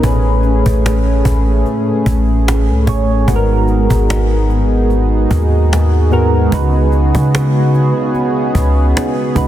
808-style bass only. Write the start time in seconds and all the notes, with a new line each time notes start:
0.04 A1
0.66 A1
1.25 A1
2.06 A1
2.69 C#2
2.88 A1
3.28 G#1
3.90 G#1
5.31 D#2
6.53 C#2
7.15 C#3
8.55 C#2
9.36 C#2